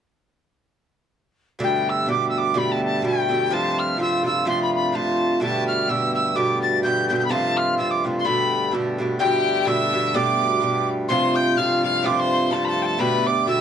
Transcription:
1.59 G2 B2 D3 G3 A3 G4
1.63 G5
1.89 E6
2.06 B2 D3 A3 G4 D6
2.29 E6
2.37 D6
2.54 B2 D3 A3 G4 B5
2.71 A5
2.84 A5
3.02 B2 D3 A3 G4 G5
3.29 B2 D3 A3 G4
3.50 C3 F3 A3 F4 A5
3.79 F6
3.97 C3 F3 A3 F4 E6
4.23 C3 F3 A3 F4 E6
4.45 C3 F3 A3 F4 C6
4.62 B5
4.74 B5
4.92 C3 F3 A3 F4 A5
5.40 G2 B2 D3 G3 A3 G4 A5
5.67 F6
5.87 B2 D3 A3 G4 E6
6.14 E6
6.35 B2 D3 A3 G4 D6
6.61 A6
6.83 B2 D3 A3 G4 G6
7.08 B2 D3 A3 G6
7.12 G4 G6
7.18 G6
7.24 B5
7.29 C3 F3 A3 F4 A5
7.57 F6
7.77 C3 F3 A3 F4 E6
7.90 D6
8.04 C3 F3 A3 F4
8.19 C6
8.24 B2 D3 A3 G4 B5
8.71 B2 D3 A3 G4
8.98 B2 D3 A3 G4
9.19 G2 B2 D3 G3 A3 G4 G5
9.65 B2 D3 A3 G4 E5 E6
9.92 B2 D3 A3 G4
10.14 B2 D3 A3 G4 D5 D6
10.61 B2 D3 A3 G4
11.08 C3 F3 A3 F4 C5 C6
11.35 G5 G6
11.57 C3 F3 A3 F4 F5 F6
11.82 C3 F3 A3 F4 F5 F6
12.03 C3 F3 A3 F4 D5 D6
12.15 C5 C6
12.31 C6
12.50 C3 F3 A3 F4 A4 A5
12.64 A4 B5
12.68 A5
12.82 G5 A5
12.99 G2 B2 D3 G3 A3 G4 B4 B5
13.26 D5 D6
13.46 B2 D3 A3 G4 E5 E6

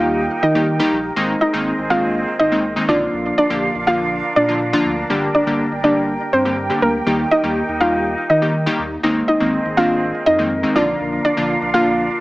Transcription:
Already playing: D#2 D#3 G3 A#3 D#4 F4 G4 A#4 F5 G5
0.43 D#3 D#4 D#5
0.55 D#3 G3 A#3 D#4 G4
0.79 D#3 G3 A#3 D#4 G4
0.92 A#1
1.16 G#1 D#3 G#3 A#3 C4 D#4 G#4 D#5
1.41 D#4 D#5
1.53 G#1 D#3 G#3 A#3 C4 D#4
1.78 G#1
1.90 D#3 G#3 A#3 C4 D4 F4 F5
2.39 G#1 D#4 D#5
2.52 D#3 G#3 A#3 C4 D#4
2.76 D#3 G#3 A#3 C4 D#4
2.88 A#1 D3 F3 A#3 D4 F4 A#4 D5 F5
3.13 A#1
3.38 D4 D5
3.50 A#1 D3 F3 A#3 D4 G4
3.75 A#1
3.87 D3 F3 A#3 D4 F4 F5
4.36 A#2 D4 D5
4.48 D3 F3 A#3 D4 F4
4.73 D3 F3 A#3 D4 F4
4.85 D2
5.10 G1 D3 G3 A#3 D4 G4 G5
5.35 D4 D5
5.47 G1 D3 G3 A#3 D4 G4
5.71 G1
5.84 D3 G3 A#3 D4 G4 D5
6.33 G2 C4 C5
6.45 D3 G3 A#3 D4 G4
6.70 D3 G3 A#3 D4 G4
6.82 D2 A#3 A#4
7.06 D#2 D#3 G3 A#3 D#4 G4
7.31 D#4 D#5
7.43 D#2 D#3 G3 A#3 D#4 G4
7.68 D#2
7.80 D#3 G3 A#3 D#4 F4 G4 F5
8.30 D#3 D#4 D#5
8.42 D#3 G3 A#3 D#4 G4
8.66 D#3 G3 A#3 D#4 G4
8.79 D#2
9.03 G#1 D#3 G#3 A#3 C4 D#4 G#4 A#4 D#5
9.28 D#4 D#5
9.40 G#1 D#3 G#3 A#3 C4 D#4
9.65 G#1
9.77 D#3 G#3 A#3 C4 D4 F4 F5
10.26 F2 D#4 D#5
10.38 D#3 G#3 A#3 C4 D#4
10.63 D#3 G#3 A#3 C4 D#4
10.75 A#1 D3 F3 A#3 D4 F4 D5 F5
11.00 A#1
11.25 D4 D5
11.37 A#1 D3 F3 A#3 D4 F4
11.62 A#1
11.74 D3 F3 A#3 D4 F4 F5

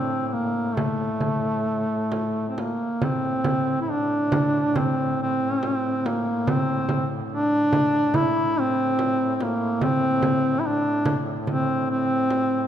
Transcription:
Already playing: A2 C4
0.28 C4
0.33 A#3
0.75 A3, frame drum
1.20 frame drum
2.12 frame drum
2.48 C4
2.58 A#3, frame drum
3.02 A2 C4, frame drum
3.44 frame drum
3.81 E4
3.91 D4
4.32 frame drum
4.76 C4, frame drum
5.22 C4
5.63 frame drum
6.06 A#3, frame drum
6.47 C4, frame drum
6.89 frame drum
7.32 D4
7.73 frame drum
8.14 E4, frame drum
8.60 C4
8.99 frame drum
9.36 C4
9.40 A#3, frame drum
9.81 C4, frame drum
10.22 frame drum
10.60 E4
10.66 D4
11.05 frame drum
11.47 C4, frame drum
11.91 C4
12.30 frame drum

